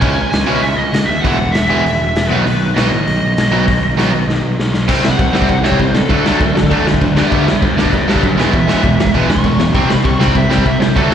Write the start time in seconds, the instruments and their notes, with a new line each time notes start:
Already playing: lead electric guitar G#5
0.01 picked electric bass C#2, distorted electric guitar C#3 G#3 C#4 E4, kick, crash
0.31 picked electric bass C#2, lead electric guitar G#5, snare, open hi-hat
0.46 picked electric bass B2, distorted electric guitar C#3 G#3 C#4 E4
0.63 picked electric bass C#2, lead electric guitar E5, open hi-hat
0.77 picked electric bass C#2, lead electric guitar D#5
0.93 picked electric bass C#2, snare, open hi-hat
1.06 picked electric bass D#2, lead electric guitar E5
1.21 overdriven electric guitar E2 B2, distorted electric guitar E3 B3, lead electric guitar F#5, kick, open hi-hat
1.25 picked electric bass E1, distorted electric guitar G#3 E4
1.40 picked electric bass E1
1.52 picked electric bass E1, lead electric guitar E5, snare, open hi-hat
1.67 overdriven electric guitar E2 B2, distorted electric guitar E3 G#3 B3, lead electric guitar E5
1.71 distorted electric guitar E4
1.86 picked electric bass E1, open hi-hat
2.00 picked electric bass E1
2.15 picked electric bass E1, snare, open hi-hat
2.28 picked electric bass B1, distorted electric guitar B2, lead electric guitar B4
2.32 distorted electric guitar D#3 F#3 B3 D#4
2.46 picked electric bass B1, open hi-hat
2.74 picked electric bass B1, distorted electric guitar B2 D#3 F#3 B3 D#4, lead electric guitar D#5, snare, open hi-hat
2.89 picked electric bass A2, lead electric guitar D#5
3.07 picked electric bass B1, open hi-hat
3.22 picked electric bass B1
3.37 picked electric bass B1, snare, open hi-hat
3.51 picked electric bass B1, distorted electric guitar B2 D#3 F#3 B3 D#4
3.68 picked electric bass B1, kick, open hi-hat
3.82 picked electric bass B1
3.97 picked electric bass B1, distorted electric guitar B2 D#3 F#3 B3 D#4, snare, open hi-hat
4.28 picked electric bass B1, snare
4.43 picked electric bass B1
4.58 picked electric bass B1, snare
4.73 picked electric bass B1, snare
4.88 picked electric bass C2, distorted electric guitar C3 G3 C4, kick, crash
5.02 distorted electric guitar C3 G3, lead electric guitar F#5, snare
5.17 picked electric bass C2, distorted electric guitar C3 G3, kick, crash
5.33 picked electric bass C2, distorted electric guitar C3 G3 C4, snare
5.42 kick
5.49 picked electric bass C2, distorted electric guitar C3 G3, kick, crash
5.63 picked electric bass C2, distorted electric guitar C3 G3 C4, lead electric guitar C#5, snare
5.72 kick
5.79 picked electric bass C2, distorted electric guitar C3 G3, lead electric guitar C5, kick, crash
5.94 picked electric bass C#2, distorted electric guitar C3 G3, lead electric guitar A4, snare
6.09 picked electric bass D2, distorted electric guitar D3 F#3 A3, overdriven electric guitar D4, kick, crash
6.24 distorted electric guitar D3 F#3 A3, overdriven electric guitar D4, snare
6.40 picked electric bass D2, distorted electric guitar D3 F#3, overdriven electric guitar A3, kick, crash
6.55 picked electric bass D2, distorted electric guitar D3 F#3, overdriven electric guitar A3, snare
6.64 kick
6.71 picked electric bass D2, distorted electric guitar D3 F#3 A3, overdriven electric guitar D4, kick, crash
6.85 picked electric bass D2, distorted electric guitar D3 F#3, overdriven electric guitar A3, snare
6.94 kick
7.01 picked electric bass D2, distorted electric guitar D3 F#3, overdriven electric guitar A3, kick, crash
7.16 picked electric bass D2, overdriven electric guitar G2, distorted electric guitar D3 G3 B3, lead electric guitar G4 E5, snare
7.31 picked electric bass D2, overdriven electric guitar G2, distorted electric guitar D3 G3 B3, lead electric guitar G4 E5, kick, crash
7.46 overdriven electric guitar G2, distorted electric guitar D3 G3, lead electric guitar G4 E5, snare
7.62 picked electric bass D2, overdriven electric guitar G2, distorted electric guitar D3 G3, lead electric guitar B4 D5, kick, crash
7.76 picked electric bass D2, overdriven electric guitar G2, distorted electric guitar D3 G3 B3, lead electric guitar B4 D5, snare
7.85 kick
7.92 picked electric bass D2, overdriven electric guitar G2, distorted electric guitar D3 G3, lead electric guitar B4 D5, kick, crash
8.07 picked electric bass D2, overdriven electric guitar G2, distorted electric guitar D3 G3 B3, lead electric guitar G4 B4, snare
8.16 kick
8.22 picked electric bass F#2, overdriven electric guitar G2, distorted electric guitar D3 G3, lead electric guitar G4 B4, kick, crash
8.37 picked electric bass E1, overdriven electric guitar E2 B2, distorted electric guitar E3 G#3 B3, snare
8.41 lead electric guitar G#4 B4
8.52 picked electric bass E1, overdriven electric guitar E2 B2, distorted electric guitar E3 G#3, lead electric guitar E5, kick, crash
8.67 overdriven electric guitar E2 B2, distorted electric guitar E3 G#3 B3, snare
8.83 picked electric bass E1, overdriven electric guitar E2 B2, distorted electric guitar E3 G#3, kick, crash
8.97 picked electric bass E1, overdriven electric guitar E2 B2, distorted electric guitar E3 G#3, snare
9.07 kick
9.13 picked electric bass E1, overdriven electric guitar E2 B2, distorted electric guitar E3 G#3 B3, kick, crash
9.28 picked electric bass E1, overdriven electric guitar E2 B2, distorted electric guitar E3 G#3, lead electric guitar C#6, snare
9.37 kick
9.44 picked electric bass E1, overdriven electric guitar E2 B2, distorted electric guitar E3 G#3, kick, crash
9.58 picked electric bass E1, overdriven electric guitar E2 B2, distorted electric guitar E3 G#3, snare
9.74 picked electric bass C2, distorted electric guitar C3 G3 C4, lead electric guitar C#6, kick, crash
9.89 distorted electric guitar C3 G3, lead electric guitar B5, snare
10.04 picked electric bass C2, distorted electric guitar C3 G3, lead electric guitar C#6, kick, crash
10.19 picked electric bass C2, distorted electric guitar C3 G3 C4, lead electric guitar B5, snare
10.28 kick
10.35 picked electric bass C2, distorted electric guitar C3 G3, lead electric guitar E5, kick, crash
10.49 picked electric bass C2, distorted electric guitar C3 G3 C4, lead electric guitar B5, snare
10.58 kick
10.64 picked electric bass C2, distorted electric guitar C3 G3, lead electric guitar E5, kick, crash
10.79 picked electric bass C2, distorted electric guitar C3 G3, lead electric guitar C5, snare
10.95 picked electric bass D2, distorted electric guitar D3 F#3 A3, overdriven electric guitar D4, lead electric guitar A4, kick, crash
11.11 distorted electric guitar D3 F#3